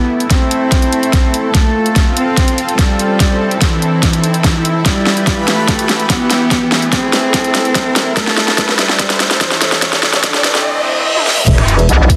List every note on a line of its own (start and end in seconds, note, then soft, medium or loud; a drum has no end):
0.00 1.53 A3 medium
0.00 0.22 B3 medium
0.00 1.53 E4 medium
0.00 4.82 A4 medium
0.00 riser medium
0.20 closed hi-hat soft
0.30 1.46 C4 loud
0.30 kick medium
0.30 snare medium
0.30 closed hi-hat medium
0.51 closed hi-hat medium
0.72 kick medium
0.72 snare medium
0.72 closed hi-hat medium
0.82 closed hi-hat medium
0.93 closed hi-hat medium
1.03 closed hi-hat soft
1.13 kick loud
1.13 snare medium
1.13 closed hi-hat medium
1.34 closed hi-hat medium
1.55 2.09 A3 loud
1.55 4.82 C4 medium
1.55 3.18 F4 medium
1.55 kick medium
1.55 snare medium
1.55 closed hi-hat medium
1.86 closed hi-hat soft
1.96 kick loud
1.96 snare medium
1.96 closed hi-hat medium
2.17 2.71 C4 medium
2.17 closed hi-hat medium
2.37 kick medium
2.37 snare medium
2.37 closed hi-hat medium
2.48 closed hi-hat medium
2.58 closed hi-hat medium
2.69 closed hi-hat soft
2.79 3.53 G3 loud
2.79 kick loud
2.79 snare medium
2.79 closed hi-hat medium
2.99 closed hi-hat medium
3.20 6.48 E4 medium
3.20 kick medium
3.20 snare medium
3.20 closed hi-hat medium
3.51 closed hi-hat soft
3.61 4.77 E3 loud
3.61 kick medium
3.61 snare medium
3.61 closed hi-hat medium
3.82 closed hi-hat medium
4.03 kick medium
4.03 snare medium
4.03 closed hi-hat medium
4.13 closed hi-hat medium
4.24 closed hi-hat medium
4.34 closed hi-hat soft
4.44 kick loud
4.44 snare medium
4.44 closed hi-hat medium
4.65 closed hi-hat soft
4.86 8.13 E3 medium
4.86 5.40 G3 loud
4.86 6.50 G4 medium
4.86 6.50 B4 medium
4.86 6.50 B5 medium
4.86 kick medium
4.86 snare medium
4.86 closed hi-hat medium
5.06 snare medium
5.17 closed hi-hat soft
5.27 kick medium
5.27 snare medium
5.27 closed hi-hat medium
5.48 6.02 A3 medium
5.48 snare medium
5.48 open hi-hat medium
5.68 kick medium
5.68 snare medium
5.68 closed hi-hat medium
5.79 closed hi-hat soft
5.89 snare medium
5.89 closed hi-hat medium
6.00 closed hi-hat soft
6.10 6.84 B3 loud
6.10 kick loud
6.10 snare medium
6.10 closed hi-hat medium
6.30 snare medium
6.30 open hi-hat medium
6.51 8.15 A3 medium
6.51 9.79 E4 medium
6.51 kick loud
6.51 snare medium
6.51 closed hi-hat medium
6.72 snare medium
6.82 closed hi-hat soft
6.92 8.09 C4 loud
6.92 kick loud
6.92 snare medium
6.92 closed hi-hat medium
7.13 snare medium
7.13 open hi-hat medium
7.34 kick loud
7.34 snare medium
7.34 closed hi-hat medium
7.44 closed hi-hat medium
7.55 snare medium
7.55 closed hi-hat medium
7.65 closed hi-hat soft
7.75 kick loud
7.75 snare medium
7.75 closed hi-hat medium
7.96 snare medium
7.96 open hi-hat medium
8.17 11.44 A3 medium
8.17 8.71 A3 loud
8.17 kick loud
8.17 snare medium
8.17 closed hi-hat medium
8.27 snare medium
8.37 snare medium
8.48 snare medium
8.48 closed hi-hat soft
8.58 kick loud
8.58 snare medium
8.58 closed hi-hat medium
8.69 snare medium
8.79 9.33 G3 loud
8.79 snare medium
8.79 open hi-hat medium
8.89 snare medium
8.99 kick loud
8.99 snare medium
8.99 closed hi-hat medium
9.10 snare medium
9.10 closed hi-hat medium
9.20 snare loud
9.20 closed hi-hat medium
9.31 snare medium
9.31 closed hi-hat soft
9.41 10.15 E3 loud
9.41 kick loud
9.41 snare loud
9.41 closed hi-hat medium
9.51 snare medium
9.62 snare loud
9.62 open hi-hat medium
9.72 snare medium
9.82 11.46 E3 medium
9.82 11.46 C4 medium
9.82 kick loud
9.82 snare loud
9.82 closed hi-hat medium
9.93 snare medium
10.03 snare loud
10.13 snare medium
10.13 closed hi-hat soft
10.23 10.65 D3 loud
10.23 kick loud
10.23 snare loud
10.23 closed hi-hat medium
10.34 snare medium
10.44 snare loud
10.44 open hi-hat medium
10.55 snare medium
10.65 reverse cymbal medium
11.17 high tom medium
11.27 snare medium
11.38 mid tom medium
11.48 11.87 E1 loud
11.48 12.16 B3 medium
11.48 12.16 E4 medium
11.48 12.16 B4 medium
11.48 kick loud
11.48 closed hi-hat medium
11.48 crash loud
11.48 sub drop medium
11.58 finger snap medium
11.68 closed hi-hat medium
11.79 closed hi-hat soft
11.89 11.98 B1 medium
11.89 closed hi-hat medium
12.00 12.08 B1 loud
12.10 kick medium
12.10 open hi-hat medium